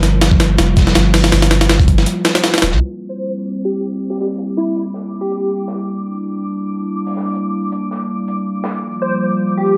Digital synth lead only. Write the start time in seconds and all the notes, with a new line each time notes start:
3.09 C5
3.65 G4
4.10 G4
4.20 G4
4.57 E4
5.21 G4
9.02 C5
9.57 G4